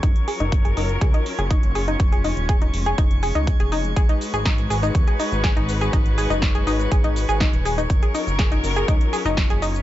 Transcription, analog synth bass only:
\new Staff \with { instrumentName = "Analog synth bass" } { \clef bass \time 4/4 \key gis \dorian \tempo 4 = 122 fis,,16 r8 fis,,8. fis,,8 cis,16 r8 fis,,8 fis,,8. | eis,,8. dis,,8. eis,,8 eis,,8. cis,8 eis,,8. | gis,,16 r8 gis,,8. gis,,8 dis,16 r8 gis,,8 gis,,8. | gis,,8. fis,,8. gis,,8 gis,,8. gis,,8 dis,,8. |
fis,,16 r8 fis,,8. fis,,8 cis,16 r8 fis,,8 fis,,8. | }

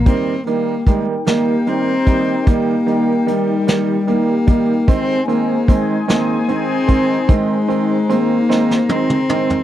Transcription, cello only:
\new Staff \with { instrumentName = "Cello" } { \time 6/8 \key ees \major \tempo 4. = 50 c'8 bes8 aes8 bes8 c'4 | bes4 g4 bes4 | c'8 bes8 aes8 bes8 c'4 | aes4 bes4 c'4 | }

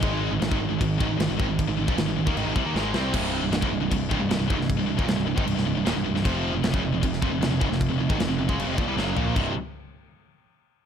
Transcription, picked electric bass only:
\new Staff \with { instrumentName = "Picked electric bass" } { \clef bass \time 4/4 \key c \minor \tempo 4 = 154 aes,,8. aes,,16 aes,,16 aes,,16 aes,,16 aes,,16 aes,,8 aes,,16 aes,,16 aes,,16 aes,,16 aes,,16 aes,,16~ | aes,,16 aes,,16 aes,,16 bes,,16 aes,,16 aes,,16 aes,,16 ees,16 aes,,16 aes,,16 c,16 ees,16 aes,,8 c,8 | c,,8. c,,16 c,,16 des,,16 c,,16 c,,16 c,,8 c,,16 c,,16 c,,16 c,,16 des,,16 c,,16~ | c,,16 c,,16 c,,16 ees,,16 c,,16 c,,16 c,,16 aes,,16 c,,16 c,,16 c,,16 c,,16 ees,,16 c,,16 c,,16 c,,16 |
f,,8. f,,16 f,,16 fis,,16 f,,16 f,,16 f,,8 f,,16 f,,16 f,,16 f,,16 fis,,16 f,,16~ | f,,16 f,,16 f,,16 aes,,16 f,,16 f,,16 f,,16 des,16 fis,,16 f,,16 bes,,16 c,16 fis,,8 bes,,8 | c,,8 r2. r8 | }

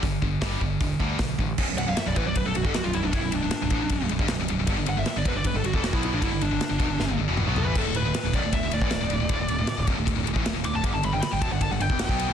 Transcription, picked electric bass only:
\new Staff \with { instrumentName = "Picked electric bass" } { \clef bass \time 4/4 \key b \minor \tempo 4 = 156 g,,8 g,,8 g,,8 g,,8 e,,8 d,8 b,,8 a,,8 | b,,,16 b,,,16 b,,,16 b,,,16 r16 b,,,16 a,,16 b,,,16 b,,,16 b,,,16 b,,,16 g,,16 b,,,16 b,,,16 b,,,16 b,,,16 | b,,,16 b,,,16 b,,,16 b,,,16 r16 b,,,16 a,,16 b,,,16 b,,,16 b,,,16 b,,,16 g,,16 b,,,16 b,,,16 b,,,16 b,,,16 | g,,16 g,,16 g,,16 g,,16 r16 g,,16 e,,16 g,,16 g,,16 g,,16 g,,16 e,,8 b,,8 a,,16 |
g,,16 g,,16 g,,16 g,,16 r16 g,,16 e,,16 g,,16 g,,16 g,,16 g,,16 e,,8 b,,8 a,,16 | d,,16 d,,16 d,,16 d,,16 r16 d,,16 b,,,16 d,,16 d,,16 d,,16 d,,16 a,,16 d,,16 d,,16 d,,16 d,,16 | d,,16 d,,16 d,,16 d,,16 r16 d,,16 b,,,16 d,,16 d,,16 d,,16 d,,16 a,,16 d,,16 d,,16 d,,16 d,,16 | g,,16 g,,16 g,,16 g,,16 r16 g,,16 e,,16 g,,16 g,,16 g,,16 g,,16 e,,8 b,,8 a,,16 | }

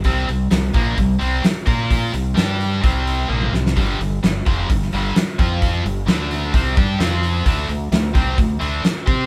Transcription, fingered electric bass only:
\new Staff \with { instrumentName = "Fingered electric bass" } { \clef bass \time 4/4 \key d \mixolydian \tempo 4 = 130 c,8 c,8 c,8 bes,,8 c,8 c,8 r8 bes,8~ | bes,8 c,8 g,4 c,4 bes,,8 c,8 | g,,8 g,,8 g,,8 f,,8 g,,8 g,,8 r8 f,8~ | f,8 g,,8 d,4 c,8 g,8 f,4 |
d,8 d,8 d,8 c,8 d,8 d,8 r8 c8 | }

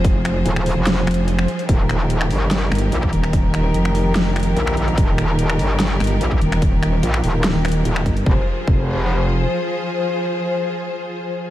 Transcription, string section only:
\new Staff \with { instrumentName = "String section" } { \time 4/4 \key f \minor \tempo 4 = 146 <f f' aes' c''>1 | <ees ees' g' bes'>1~ | <ees ees' g' bes'>1~ | <ees ees' g' bes'>1~ |
<ees ees' g' bes'>1 | <f f' aes' c''>1~ | <f f' aes' c''>1 | }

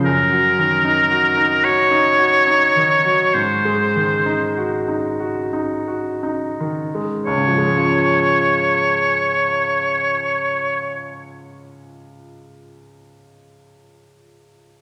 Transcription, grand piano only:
\new Staff \with { instrumentName = "Grand piano" } { \time 12/8 \key des \major \tempo 4. = 32 ges,16 ges16 ees16 ees'16 ges'16 ees'16 ges'16 ees'16 ges'16 ees'16 ees16 ges16 aes,16 aes16 ees16 ees'16 ges'16 ees'16 ges'16 ees'16 ges'16 ees'16 ees16 aes16 | <des, aes, f aes des' f'>1. | }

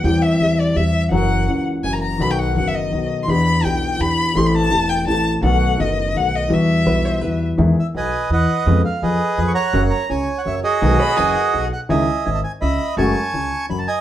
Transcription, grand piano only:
\new Staff \with { instrumentName = "Grand piano" } { \clef bass \time 3/4 \key e \minor \tempo 4 = 167 <e, e g c' g'>4 <e, e g c' g'>4 <e, e g c' g'>4 | <fis, e fis ais cis' fis'>4 <cis, cis e ais cis' fis'>4 <fis, e fis ais cis' fis'>4 | <b,, b, dis fis b fis'>4 <fis,, fis, dis fis b fis'>4 <b,, b, dis fis b fis'>4 | <e, e b d' g'>4 <b,, b, e b d' g'>4 <e, e b d' g'>4 |
<a,, a, e a c' g'>4 <e,, e, e a c' g'>4 <a,, a, e a c' g'>4 | <b,, b, dis a b fis'>4 <fis,, fis, dis a b fis'>4 <b,, b, dis a b fis'>4 | <e, e g b fis'>4 <b,, b, e g b fis'>4 <e, e g b fis'>4 | \key e \major <e, dis e gis b e'>8 r8 <b,, b,>8 r8 <e, e>8 r8 |
<eis, cis eis gis b eis'>8 r8 <eis, eis>8 r8 <eis, eis>8 r8 | <fis, cis fis ais fis'>8 r8 <cis, cis>8 r8 <fis, fis>8 r8 | <b,, b, dis gis b fis'>8 r8 <fis,, fis,>8 r8 <b,, b,>8 r8 | <cis, cis dis gis cis' e'>8 r8 <gis,, gis,>8 r8 <cis, cis>8 r8 |
<fis, cis fis gis a fis'>8 r8 <cis, cis>8 r8 <fis, fis>8 r8 | }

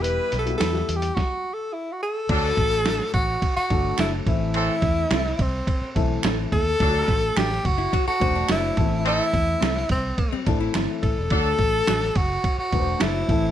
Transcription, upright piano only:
\new Staff \with { instrumentName = "Upright piano" } { \time 4/4 \key d \mixolydian \tempo 4 = 106 <g b e' g'>8 r16 <g b e' fis'>8 <g b e' g'>8. r2 | <fis a d' fis' a'>4. r4 <fis a d' fis' a'>4 <e a c' e' a'>8~ | <e a c' e' a'>4 r4. <e a c' e' a'>4~ <e a c' e' a'>16 r16 | <fis a d' f' fis' a'>4. r4 <fis a d' fis' c''>4 <e a b c' e' a'>8~ |
<e a b c' e' a'>4 r4. <e a c' e' a'>4~ <e a c' e' a'>16 r16 | <fis a d' fis' a'>4. r4 <fis a d' fis' b' c''>4 <e a c' e' a'>8 | }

